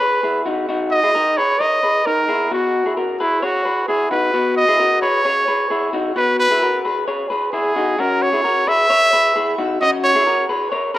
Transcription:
Already playing: trumpet B4
0.00 clean electric guitar G#4 B4
0.23 clean electric guitar E4 G#4
0.46 clean electric guitar D#4 F#4
0.69 clean electric guitar D#4 F#4
0.91 trumpet D#5
1.03 clean electric guitar E4 G#4
1.15 clean electric guitar D#4 A#4
1.37 clean electric guitar G#4 B4, trumpet C#5
1.60 clean electric guitar A#4 C#5, trumpet D#5
1.83 clean electric guitar G#4 B4
2.06 clean electric guitar D#4 A#4, trumpet A#4
2.29 clean electric guitar E4 G#4
2.51 clean electric guitar B3 F#4, trumpet F#4
2.86 clean electric guitar E4 G#4
2.97 clean electric guitar F#4 A#4
3.20 trumpet E4, clean electric guitar G#4 B4
3.42 trumpet F#4, clean electric guitar G#4 C#5
3.65 clean electric guitar G#4 B4
3.88 clean electric guitar E4 G#4, trumpet G#4
4.11 clean electric guitar D#4 F#4, trumpet B4
4.34 clean electric guitar B3 F#4
4.56 trumpet D#5
4.68 clean electric guitar E4 G#4
4.79 clean electric guitar F#4 A#4
5.02 clean electric guitar G#4 B4, trumpet C#5
5.25 clean electric guitar G#4 C#5
5.48 clean electric guitar G#4 B4
5.70 clean electric guitar E4 G#4
5.93 clean electric guitar D#4 F#4
6.16 clean electric guitar B3 F#4, trumpet B4
6.39 trumpet B4
6.50 clean electric guitar E4 G#4
6.62 clean electric guitar F#4 A#4
6.85 clean electric guitar G#4 B4
7.08 clean electric guitar G#4 C#5
7.30 clean electric guitar G#4 B4
7.53 clean electric guitar E4 G#4, trumpet G#4
7.76 clean electric guitar D#4 F#4
7.99 clean electric guitar C#4 F#4, trumpet A#4
8.22 trumpet C#5
8.33 clean electric guitar E4 G#4
8.44 clean electric guitar F#4 A#4
8.67 clean electric guitar G#4 B4, trumpet E5
8.90 clean electric guitar A#4 C#5
9.13 clean electric guitar G#4 B4
9.36 clean electric guitar E4 G#4
9.58 clean electric guitar D#4 F#4
9.80 clean electric guitar C#4 F#4, trumpet D#5
10.03 trumpet C#5
10.15 clean electric guitar E4 G#4
10.27 clean electric guitar F#4 A#4
10.49 clean electric guitar G#4 B4
10.72 clean electric guitar A#4 C#5
10.94 clean electric guitar G#4 B4, trumpet A#4

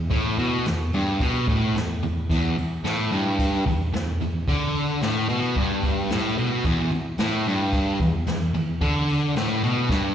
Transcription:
0.10 distorted electric guitar A2, kick, ride
0.38 distorted electric guitar B2, ride
0.65 distorted electric guitar E2, snare, ride
0.93 distorted electric guitar G2, ride
1.20 distorted electric guitar B2, kick, ride
1.48 distorted electric guitar A2, kick, ride
1.75 distorted electric guitar E2, snare, ride
2.03 distorted electric guitar E2, ride
2.30 distorted electric guitar E2, kick, crash
2.57 muted distorted electric guitar stroke, ride
2.84 distorted electric guitar A2, snare, ride
3.12 distorted electric guitar G2, ride
3.39 kick, ride
3.66 distorted electric guitar E2, kick, ride
3.94 distorted electric guitar E2, snare, ride
4.21 distorted electric guitar E2, ride
4.47 distorted electric guitar D3, kick, ride
4.75 ride
5.01 distorted electric guitar A2, snare, ride
5.29 distorted electric guitar B2, ride
5.56 distorted electric guitar G2, kick, ride
5.83 kick, ride
6.10 distorted electric guitar A2, snare, ride
6.38 distorted electric guitar B2, ride
6.64 distorted electric guitar E2, kick, ride
6.90 muted distorted electric guitar stroke, ride
7.18 distorted electric guitar A2, snare, ride
7.45 distorted electric guitar G2, ride
7.73 kick, ride
7.99 distorted electric guitar E2, kick, ride
8.26 distorted electric guitar E2, snare, ride
8.54 distorted electric guitar E2, ride
8.81 distorted electric guitar D3, kick, ride
9.09 ride
9.36 distorted electric guitar A2, snare, ride
9.63 distorted electric guitar B2, ride
9.89 distorted electric guitar G2, kick, snare

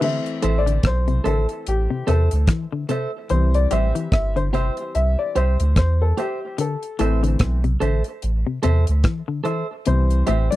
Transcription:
0.01 clean electric guitar D3, upright piano E3 A3 C4 E5, crash
0.26 closed hi-hat
0.42 sub bass A1, clean electric guitar E3 A4 C5 E5, closed hi-hat
0.58 upright piano D5
0.66 clean electric guitar D3, closed hi-hat
0.83 sub bass B1, upright piano C5, kick, cross-stick, closed hi-hat
1.08 clean electric guitar C3, closed hi-hat
1.24 sub bass A1, clean electric guitar D3 A4 C5 E5, upright piano A4, closed hi-hat
1.49 muted clean electric guitar stroke, closed hi-hat
1.67 sub bass A1, upright piano G4, closed hi-hat
1.90 clean electric guitar C3
2.07 sub bass E2, clean electric guitar C3 A4 C5 E5, upright piano A4, closed hi-hat
2.31 sub bass D2, muted clean electric guitar stroke, closed hi-hat
2.47 clean electric guitar E3, kick, cross-stick, closed hi-hat
2.73 clean electric guitar D3
2.89 clean electric guitar C3 A4 C5 E5, closed hi-hat
3.29 sub bass C2, upright piano E3 G3 C4 C5, clean electric guitar E3, closed hi-hat
3.54 upright piano D5, closed hi-hat
3.71 sub bass A1, clean electric guitar G3 G4 C5 E5, upright piano E5, closed hi-hat
3.95 clean electric guitar E3, closed hi-hat
4.12 sub bass G1, upright piano E5, kick, cross-stick, closed hi-hat
4.36 clean electric guitar D3, upright piano C5, closed hi-hat
4.53 clean electric guitar C3 G4 C5 E5, upright piano C5, closed hi-hat
4.77 muted clean electric guitar stroke, closed hi-hat
4.95 sub bass C2, upright piano E5, closed hi-hat
5.19 upright piano D5
5.35 sub bass C2, clean electric guitar G4 C5 E5, upright piano C5, closed hi-hat
5.60 sub bass D2, muted clean electric guitar stroke, closed hi-hat
5.76 sub bass E2, upright piano C5, kick, cross-stick, closed hi-hat
6.02 upright piano A4
6.17 clean electric guitar G4 C5 E5, upright piano G4, closed hi-hat
6.58 clean electric guitar D3, upright piano A4, closed hi-hat
6.83 closed hi-hat
6.99 sub bass A1, clean electric guitar E3 A4 C5 E5, upright piano E3 A3 C4, closed hi-hat
7.23 clean electric guitar D3, closed hi-hat
7.39 sub bass B1, kick, cross-stick, closed hi-hat
7.64 clean electric guitar C3, closed hi-hat
7.80 sub bass A1, clean electric guitar D3 A4 C5 E5, closed hi-hat
8.04 muted clean electric guitar stroke, closed hi-hat
8.22 sub bass A1, closed hi-hat
8.47 clean electric guitar C3
8.63 sub bass E2, clean electric guitar C3 A4 C5 E5, closed hi-hat
8.86 sub bass D2, muted clean electric guitar stroke, closed hi-hat
9.04 clean electric guitar E3, kick, cross-stick, closed hi-hat
9.28 clean electric guitar D3
9.44 clean electric guitar E3 A4 C5 E5, closed hi-hat
9.85 sub bass C2, clean electric guitar C3, upright piano E3 G3 C4 C5, closed hi-hat
10.10 closed hi-hat
10.26 sub bass A1, clean electric guitar A2 G4 C5 E5, upright piano E5, closed hi-hat
10.51 clean electric guitar G2, upright piano D5, closed hi-hat

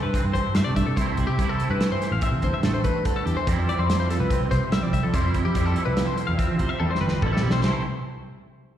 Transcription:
Already playing: clean electric guitar E3 A3 C4 E4
0.03 picked electric bass G2, clean electric guitar B4
0.14 clean electric guitar C4, kick, closed hi-hat
0.25 picked electric bass G2
0.34 picked electric bass G2, clean electric guitar G2 C5, kick, closed hi-hat
0.55 picked electric bass G2, clean electric guitar A3 E5, snare, closed hi-hat
0.64 picked electric bass C3, clean electric guitar D5
0.76 picked electric bass G2, clean electric guitar E5, kick, closed hi-hat
0.86 picked electric bass C3, clean electric guitar A4
0.96 picked electric bass C2, clean electric guitar C3 A3 C4 C5, kick, closed hi-hat
1.01 clean electric guitar E4
1.17 picked electric bass C2, clean electric guitar E4, kick, closed hi-hat
1.27 picked electric bass C3, clean electric guitar G4
1.39 picked electric bass C2, clean electric guitar C3 A3 C4 E4, kick, closed hi-hat
1.49 clean electric guitar A4
1.60 clean electric guitar E4, closed hi-hat
1.70 picked electric bass G2, clean electric guitar B4
1.80 clean electric guitar E3, snare, closed hi-hat
1.92 clean electric guitar C5
2.02 snare, closed hi-hat
2.12 picked electric bass A1, clean electric guitar F5
2.21 clean electric guitar C4 E5, kick, closed hi-hat
2.32 picked electric bass C3
2.42 picked electric bass E2, clean electric guitar G2 C5, kick, closed hi-hat
2.54 clean electric guitar E5
2.63 picked electric bass A1, clean electric guitar A3 A4, snare, closed hi-hat
2.74 clean electric guitar C5
2.84 clean electric guitar B4, kick, closed hi-hat
3.05 clean electric guitar D3 A4, kick, closed hi-hat
3.16 clean electric guitar A4
3.26 picked electric bass E2, clean electric guitar E3 G4, closed hi-hat
3.37 clean electric guitar C5
3.47 picked electric bass F2, clean electric guitar F2 G3 C4 E4 A4, kick, closed hi-hat
3.69 clean electric guitar E4 D5, closed hi-hat
3.79 picked electric bass F2, clean electric guitar C5
3.88 clean electric guitar F3, snare, closed hi-hat
4.00 clean electric guitar C5
4.10 clean electric guitar A4, snare, closed hi-hat
4.20 picked electric bass C2, clean electric guitar B4
4.30 clean electric guitar C4, kick, closed hi-hat
4.41 picked electric bass C2
4.51 picked electric bass C2, clean electric guitar C3 C5, kick, snare, closed hi-hat
4.72 picked electric bass C2, clean electric guitar G3 E5, snare, closed hi-hat
4.83 picked electric bass F3, clean electric guitar D5
4.93 picked electric bass C2, clean electric guitar E5, kick, closed hi-hat
5.03 picked electric bass F3, clean electric guitar A4
5.13 clean electric guitar F2 G3 C4 E4 C5, picked electric bass F2, kick, closed hi-hat
5.34 picked electric bass F2, clean electric guitar E4, kick, closed hi-hat
5.45 picked electric bass F3, clean electric guitar G4
5.55 clean electric guitar F2 G3 C4 E4, picked electric bass F2, kick, closed hi-hat
5.66 clean electric guitar A4
5.76 clean electric guitar E4, closed hi-hat
5.85 picked electric bass C2, clean electric guitar B4
5.97 clean electric guitar F3, snare, closed hi-hat
6.06 clean electric guitar C5
6.18 closed hi-hat
6.27 picked electric bass E2, clean electric guitar F5
6.38 clean electric guitar C4 E5, kick, closed hi-hat
6.48 picked electric bass F3
6.59 picked electric bass A2, clean electric guitar C3 C5, kick, closed hi-hat
6.69 clean electric guitar E5
6.80 picked electric bass E2, clean electric guitar G3 A4, high tom
6.91 clean electric guitar C5
6.95 snare
7.01 picked electric bass G1, clean electric guitar B4
7.08 snare
7.22 picked electric bass A1, clean electric guitar F2 G3 C4 E4 A4, kick
7.33 clean electric guitar A4, snare
7.43 picked electric bass B1, clean electric guitar E4 G4
7.50 clean electric guitar C5, snare
7.62 picked electric bass C2, clean electric guitar C3 E3 A3 C4 C5, snare, ride bell
7.67 clean electric guitar E4

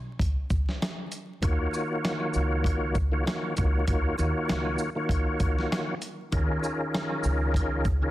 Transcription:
0.19 kick, closed hi-hat, shaker
0.50 kick, shaker
0.69 snare
0.82 cross-stick, snare, closed hi-hat, shaker
1.12 closed hi-hat, shaker
1.42 upright bass D#2, tonewheel organ D#3 A#3 F4 F#4 C#5, kick, closed hi-hat, shaker
1.73 high woodblock, shaker
2.04 cross-stick, snare, closed hi-hat, shaker
2.20 high woodblock
2.34 upright bass C#2, shaker
2.64 kick, closed hi-hat, shaker
2.95 kick, shaker
3.12 tonewheel organ D#3 A#3 F4 F#4 C#5
3.25 tonewheel organ D#3 A#3 F4 F#4 C#5, cross-stick, snare, closed hi-hat, shaker
3.56 upright bass C#2, tonewheel organ D#3 A#3 F4 F#4 C#5, kick, closed hi-hat, shaker
3.87 upright bass D#2, tonewheel organ D#3 A#3 F4 F#4 C#5, kick, closed hi-hat, shaker
4.18 upright bass D#2, tonewheel organ D#3 A#3 F4 F#4 C#5, high woodblock, shaker
4.49 upright bass C#2, cross-stick, snare, closed hi-hat, shaker
4.65 high woodblock
4.78 shaker
4.96 tonewheel organ D#3 A#3 F4 F#4 C#5
5.09 kick, closed hi-hat, shaker
5.40 kick, closed hi-hat, shaker
5.58 snare
5.72 cross-stick, snare, closed hi-hat, high woodblock, shaker
6.02 closed hi-hat, shaker
6.32 upright bass D#2, tonewheel organ D#3 C#4 F4 G#4 A#4, kick, closed hi-hat, shaker
6.63 high woodblock, shaker
6.94 cross-stick, snare, closed hi-hat, shaker
7.10 high woodblock
7.24 upright bass C#2, shaker
7.54 kick, closed hi-hat, shaker
7.85 kick, shaker
8.02 tonewheel organ D#3 C#4 F4 G#4 A#4

